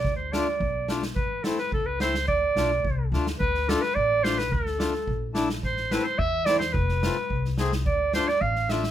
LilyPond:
<<
  \new Staff \with { instrumentName = "Clarinet" } { \time 2/4 \tempo 4 = 108 d''16 c''16 d''4 r8 | b'8 a'16 b'16 a'16 b'16 c''8 | d''4. r8 | b'8 a'16 b'16 d''8 c''16 b'16 |
a'4. r8 | c''8 b'16 c''16 e''8 d''16 c''16 | b'4. r8 | d''8 c''16 d''16 f''8 e''8 | }
  \new Staff \with { instrumentName = "Accordion" } { \time 2/4 r8 <a d' f'>16 r8. <a d' f'>16 r16 | r8 <a c' e'>16 r8. <a c' e'>16 r16 | r8 <a d' f'>16 r8. <a d' f'>16 r16 | r8 <a d' f'>16 r8. <a d' f'>16 r16 |
r8 <a d' f'>16 r8. <a d' e'>16 r16 | r8 <a c' e'>16 r8. <a c' e'>16 r16 | r8 <a c' f'>16 r8. <a c' gis'>16 r16 | r8 <a d' f'>16 r8. <a d' f'>16 r16 | }
  \new Staff \with { instrumentName = "Upright bass" } { \clef bass \time 2/4 d,4 b,,4 | a,,4 cis,4 | d,8 b,,8 c,8 d,8 | d,4 a,,4 |
d,4 bes,,4 | a,,4 e,4 | f,,4 c,4 | d,4 a,,4 | }
  \new DrumStaff \with { instrumentName = "Drums" } \drummode { \time 2/4 <bd sn>8 sn8 bd8 sn16 sn16 | bd8 sn16 sn16 bd8 sn16 sn16 | bd8 sn8 bd8 sn16 sn16 | bd16 sn16 sn16 sn16 bd8 sn16 sn16 |
bd16 sn16 sn16 sn16 bd8 sn16 sn16 | <bd sn>16 sn16 sn8 bd8 sn16 sn16 | bd16 sn16 sn8 bd16 sn16 sn16 sn16 | bd8 sn16 sn16 bd16 sn16 sn16 sn16 | }
>>